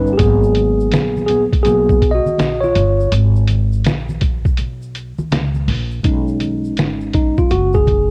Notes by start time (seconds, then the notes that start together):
Already playing: G1 G3 B3 C#4 D#4 B4
0.07 shaker
0.13 G4
0.18 G#1 F#3 A#3 B3 G#4, kick, closed hi-hat, shaker
0.43 shaker
0.55 closed hi-hat, high conga, shaker
0.80 shaker
0.92 A#1, snare, closed hi-hat, shaker
1.17 high conga, shaker
1.26 B3 G#4, closed hi-hat, low conga, shaker
1.52 muted upright bass stroke, kick, closed hi-hat, shaker
1.63 B1 F#3 A#3 B3 G#4, closed hi-hat, shaker
1.89 kick, shaker
2.02 kick, closed hi-hat, shaker
2.11 F#4 D#5
2.25 muted upright bass stroke, high conga, shaker
2.38 A#1, snare, closed hi-hat, shaker
2.60 F4 C#5, high conga, shaker
2.75 G1, closed hi-hat, low conga, shaker
3.00 shaker
3.12 G#1, closed hi-hat, shaker
3.36 shaker
3.48 closed hi-hat, high conga, shaker
3.73 shaker
3.85 A#1, snare, closed hi-hat, shaker
4.09 high conga, shaker
4.21 kick, closed hi-hat, low conga, shaker
4.45 muted upright bass stroke, kick, shaker
4.57 B1, closed hi-hat, shaker
4.82 shaker
4.95 closed hi-hat, shaker
5.18 muted upright bass stroke, high conga, shaker
5.31 C#2, snare, closed hi-hat, low conga, shaker
5.54 high conga, shaker
5.68 A#1, open hi-hat, low conga, shaker
5.91 shaker
6.03 B1 G#3 C#4 D#4, kick, closed hi-hat, shaker
6.27 shaker
6.40 closed hi-hat, high conga, shaker
6.64 shaker
6.77 G#1, snare, closed hi-hat, shaker
7.01 shaker
7.13 D#4, kick, closed hi-hat, low conga, shaker
7.37 F4, kick, shaker
7.50 F#1 F#4, closed hi-hat, shaker
7.73 G#4, kick, shaker
7.87 kick, closed hi-hat, high conga, shaker